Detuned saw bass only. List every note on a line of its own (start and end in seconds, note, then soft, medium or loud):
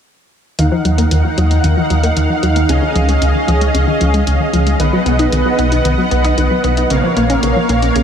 0.59 0.69 D#2 medium
0.85 1.06 D#2 loud
1.11 1.22 D#2 medium
1.38 1.58 D#2 medium
1.64 1.74 D#2 medium
1.90 2.11 D#2 medium
2.17 2.27 D#2 loud
2.43 2.64 D#2 medium
2.69 2.80 C#2 loud
2.96 3.16 C#2 loud
3.22 3.32 C#2 medium
3.48 3.69 C#2 medium
3.75 3.85 C#2 medium
4.01 4.21 C#2 medium
4.27 4.37 C#2 loud
4.53 4.74 C#2 medium
4.80 4.90 B1 medium
5.06 5.27 B1 loud
5.32 5.43 B1 medium
5.59 5.79 B1 medium
5.85 5.95 B1 medium
6.11 6.32 B1 medium
6.38 6.48 B1 loud
6.64 6.85 B1 medium
6.90 7.01 A#1 medium
7.17 7.37 A#1 loud
7.43 7.53 A#1 medium
7.69 7.90 A#1 medium
7.96 8.03 A#1 medium